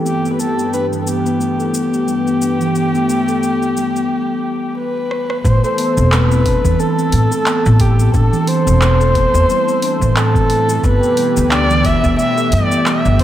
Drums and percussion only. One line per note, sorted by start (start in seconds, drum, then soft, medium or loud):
0.06 cabasa soft
0.25 cabasa soft
0.40 cabasa medium
0.59 cabasa soft
0.74 cabasa soft
0.93 cabasa soft
1.07 cabasa medium
1.26 cabasa soft
1.41 cabasa soft
1.60 cabasa soft
1.74 cabasa medium
1.94 cabasa soft
2.08 cabasa soft
2.27 cabasa soft
2.42 cabasa medium
2.61 cabasa soft
2.75 cabasa soft
2.95 cabasa soft
3.09 cabasa medium
3.28 cabasa soft
3.43 cabasa soft
3.62 cabasa soft
3.77 cabasa medium
3.96 cabasa soft
5.11 cross-stick medium
5.30 cross-stick medium
5.45 kick loud
5.45 cabasa medium
5.64 cabasa soft
5.78 open hi-hat medium
5.97 cabasa medium
6.12 clap loud
6.12 cabasa medium
6.32 cabasa soft
6.46 kick loud
6.46 open hi-hat medium
6.65 kick medium
6.65 cabasa medium
6.80 cabasa medium
6.99 cabasa soft
7.12 open hi-hat loud
7.32 cabasa medium
7.46 clap loud
7.46 cabasa medium
7.66 cabasa soft
7.80 kick loud
7.80 open hi-hat loud
7.99 cabasa medium
8.14 kick loud
8.14 cabasa medium
8.33 cabasa soft
8.47 open hi-hat medium
8.67 cabasa medium
8.81 clap loud
8.81 cabasa medium
9.01 cabasa soft
9.15 kick loud
9.15 open hi-hat medium
9.34 kick medium
9.34 cabasa medium
9.50 cabasa medium
9.68 cabasa soft
9.82 open hi-hat medium
10.01 kick medium
10.01 cabasa medium
10.16 clap loud
10.16 cabasa medium
10.35 kick loud
10.35 cabasa soft
10.50 open hi-hat medium
10.69 cabasa medium
10.84 kick loud
10.84 cabasa medium
11.03 cabasa soft
11.17 open hi-hat medium
11.37 cabasa medium
11.51 clap loud
11.51 cabasa medium
11.70 cabasa soft
11.85 kick medium
11.85 open hi-hat medium
12.04 kick medium
12.04 cabasa medium
12.19 cabasa medium
12.38 cabasa soft
12.52 open hi-hat medium
12.72 cabasa medium
12.86 clap loud
12.86 cabasa medium
13.05 cabasa soft
13.19 kick loud
13.19 open hi-hat medium